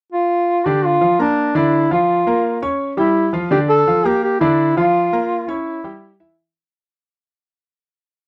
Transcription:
0.12 F4
0.66 D3 D4 G4 D5
0.85 F4
1.01 F3 F4 F5
1.19 A#3 D4 A#4 A#5
1.55 D3 D4 E4 D5
1.91 F3 F4 F5
2.27 A#3 A#4 A#5
2.62 C#4 C#5 C#6
2.97 G3 E4 G4 G5
3.33 F3 F4 F5
3.51 D3 D4 G4 D5
3.69 A4
3.87 F3 F4 F5
4.05 A#3 G4 A#4 A#5
4.24 G4
4.40 D3 D4 E4 D5
4.77 F3 F4 F5
5.13 A#3 A#4 A#5
5.48 C#4 E4 C#5 C#6
5.84 G3 G4 G5
6.20 E3 E4 E5

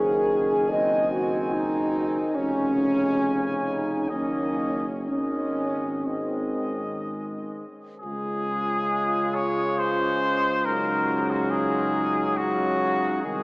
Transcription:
Already playing: F#1 D#3 C#4 G#4 G#5
0.70 C4 D#5
1.11 F#4
1.52 D#4
2.33 F1 C#3 C#4 G#5
3.63 D#4
4.09 F#1 D#3 A#3 C#4 D#5
5.06 G#1 D#3 G#3 C#4 D#5
6.05 D#3 G#3 C4 D#5
8.00 C#3 G#3 F4 G#4
8.04 C#2
9.35 C#5
9.78 C5
10.65 C#3 F#3 D#4 A#4
11.30 F#4
11.50 G#4
12.37 C#3 F#3 D#4 F#4
13.22 C2 D#3 G#3 D#4 G#4

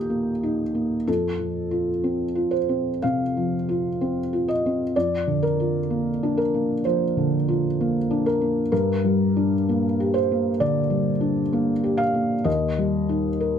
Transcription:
Already playing: A#2 A#3 D#4 G4 A#5 D#6 G6
0.10 A#3
0.43 D#4
0.75 A#3
1.07 F2 A4
1.39 F3
1.71 F4
2.04 C4
2.35 F4
2.51 C5
2.69 C4
3.02 C3 F5
3.37 F3
3.69 F4
4.01 C4
4.33 F4
4.48 D#5
4.66 C4
4.96 F2 D5
5.27 D3
5.43 A#4
5.60 F4
5.90 A#3
6.23 D4
6.37 A#4
6.54 A#3
6.85 F3 C5
7.17 D3
7.48 F4
7.81 A#3
8.11 D4
8.26 A#4
8.41 A#3
8.72 G2 A#4
9.04 G3
9.36 D4
9.69 A#3
10.00 G4
10.14 C5
10.32 A#3
10.60 D3 D5
10.90 G3
11.21 D4
11.53 A#3
11.84 G4
11.97 F5
12.14 A#3
12.44 D#2 D#5
12.78 G3
13.09 D#4
13.40 A#4

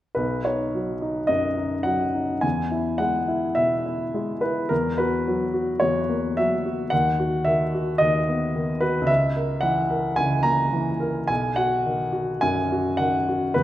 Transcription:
0.15 B1 B4
0.45 D#4 C#5
0.74 F#3
1.02 D#4
1.27 F#2 D#5
1.57 D#4
1.83 F#3 F#5
2.15 D#4
2.41 E2 G#5
2.71 E4
2.98 G#3 F#5
3.28 E4
3.55 B2 E5
3.86 E4
4.14 G#3
4.41 E4 B4
4.69 E2 A#4
4.98 F#4 B4
5.27 F#3
5.54 F#4
5.80 E2 C#5
6.09 A#3
6.37 F#3 E5
6.66 F#4
6.90 D#2 F#5
7.20 F#4
7.45 D#3 E5
7.74 F#4
7.98 D#2 D#5
8.29 B3
8.56 D#3
8.81 F#4 B4
9.01 C#2
9.07 E5
9.36 A#4
9.61 E3 F#5
9.90 A#4
10.16 C#2 G#5
10.43 A#3 A#5
10.73 E3
11.00 A#4
11.28 B1 G#5
11.56 F#4 F#5
11.86 D#3
12.12 F#4
12.41 F#2 G#5
12.72 F#4
12.97 D#3 F#5
13.29 F#4
13.54 E2 B4

